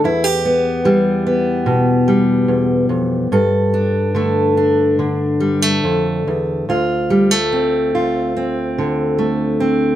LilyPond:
\new Staff \with { instrumentName = "Steel-string acoustic guitar" } { \clef bass \time 4/4 \key d \dorian \tempo 4 = 72 << { e'16 g'16 b8 g8 b4 g4. | a'8 d'8 a8 d'4 g16 a4~ a16 | f'8 g16 a16 c'8 f'8 c'4 a8 c'8 | } \\ { e,4 e4 b,4 e,8 f,8 | g,4 d4 d4 f,8 e,8 | d,2~ d,8 d4. | } >> }